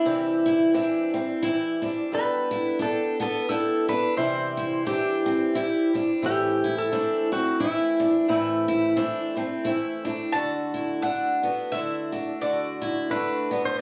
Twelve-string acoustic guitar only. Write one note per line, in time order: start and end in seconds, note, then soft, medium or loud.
0.05 0.74 C3 medium
0.05 0.73 E3 medium
0.05 0.74 G3 medium
0.05 0.73 C4 medium
0.05 0.74 E4 medium
0.74 1.14 E3 medium
0.74 1.14 G3 medium
0.74 1.14 C4 medium
0.74 1.13 E4 medium
1.14 1.43 G3 soft
1.14 1.43 C4 soft
1.14 1.43 E4 soft
1.43 1.83 E3 medium
1.43 1.83 G3 medium
1.43 1.83 C4 medium
1.43 1.82 E4 medium
1.83 2.11 G3 soft
1.83 2.12 C4 soft
1.83 2.12 E4 soft
2.12 2.80 G3 medium
2.12 2.80 B3 medium
2.12 2.81 D4 medium
2.12 2.81 A4 medium
2.80 3.20 G3 medium
2.80 3.20 B3 medium
2.80 3.20 D4 medium
2.80 3.19 A4 medium
3.20 3.48 B3 soft
3.20 3.49 D4 soft
3.20 3.49 A4 soft
3.49 3.88 G3 medium
3.49 3.89 B3 medium
3.49 3.88 D4 medium
3.49 3.87 A4 medium
3.88 4.17 B3 soft
3.88 4.17 D4 soft
3.88 4.17 A4 medium
4.16 4.86 C3 medium
4.16 4.84 E3 medium
4.16 4.85 G3 medium
4.16 4.86 C4 medium
4.16 4.86 E4 medium
4.85 5.53 E3 medium
4.85 5.53 G3 medium
4.85 5.54 C4 medium
4.85 5.55 E4 medium
5.54 5.94 E3 medium
5.54 5.94 G3 medium
5.54 5.93 C4 medium
5.54 5.92 E4 medium
5.93 6.23 G3 soft
5.93 6.22 C4 medium
5.93 6.22 E4 medium
6.22 6.92 A2 medium
6.22 6.90 E3 medium
6.22 6.92 A3 medium
6.22 6.91 C4 medium
6.22 6.92 E4 medium
6.91 7.31 E3 medium
6.91 7.32 A3 medium
6.91 7.31 C4 medium
6.91 7.31 E4 medium
7.32 7.60 A3 soft
7.32 7.60 C4 soft
7.32 7.61 E4 medium
7.60 8.28 E3 medium
7.60 8.28 A3 medium
7.60 8.28 C4 medium
7.60 8.29 E4 medium
8.28 8.98 A2 medium
8.28 8.94 E3 medium
8.28 8.95 A3 medium
8.28 8.96 C4 medium
8.28 8.96 E4 medium
8.96 9.37 E3 medium
8.96 9.36 A3 medium
8.96 9.36 C4 medium
8.96 9.34 E4 medium
9.36 9.64 A3 soft
9.36 9.64 C4 soft
9.36 9.65 E4 medium
9.64 10.06 E3 medium
9.64 10.05 A3 medium
9.64 10.04 C4 medium
9.64 10.03 E4 medium
10.04 10.33 A3 soft
10.04 10.34 C4 soft
10.04 10.35 E4 medium
10.34 11.03 D3 medium
10.34 11.03 A3 medium
10.34 11.03 D4 medium
10.34 11.04 F#4 medium
11.04 11.44 D3 soft
11.04 11.44 A3 medium
11.04 11.43 D4 medium
11.04 11.42 F#4 medium
11.43 11.71 A3 soft
11.43 11.72 D4 soft
11.43 11.73 F#4 soft
11.72 12.13 D3 medium
11.72 12.13 A3 medium
11.72 12.12 D4 medium
11.72 12.11 F#4 medium
12.12 12.41 A3 soft
12.12 12.42 D4 soft
12.12 12.42 F#4 soft
12.41 13.08 D3 medium
12.41 13.09 A3 medium
12.41 13.09 D4 medium
12.41 13.10 F#4 medium
13.09 13.51 D3 medium
13.09 13.51 A3 medium
13.09 13.50 D4 medium
13.09 13.49 F#4 medium
13.50 13.80 A3 soft
13.50 13.80 D4 soft
13.50 13.80 F#4 soft